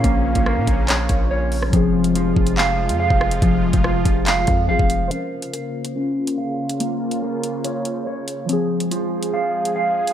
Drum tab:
HH |x--x--x-x-x---o-|x--xx--x---x---x|x--x--x-x-x---x-|x--xx--x---x---x|
CP |--------x-------|--------x-------|--------x-------|----------------|
SD |----r----------r|--------------r-|----r-----------|----------------|
BD |o--o--o---o-----|o-----o------o--|o--o--o---o--o--|----------------|

HH |x--x--x-x-x---x-|x--xx--x---x---x|
CP |----------------|----------------|
SD |----------------|----------------|
BD |----------------|----------------|